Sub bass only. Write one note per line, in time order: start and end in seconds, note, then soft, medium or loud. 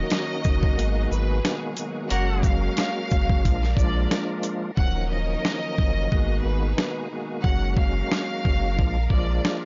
0.45 0.74 F#1 medium
0.78 1.07 G#1 loud
1.11 1.40 G#1 medium
2.11 2.69 F#1 loud
3.12 3.47 F#1 medium
3.46 3.74 A#1 loud
3.77 4.06 A#1 medium
4.78 5.36 D#1 loud
5.79 6.07 F#1 medium
6.12 6.41 G#1 loud
6.45 6.74 G#1 medium
7.44 8.03 F#1 loud
8.45 8.80 F#1 medium
8.79 9.07 A#1 loud
9.10 9.40 A#1 medium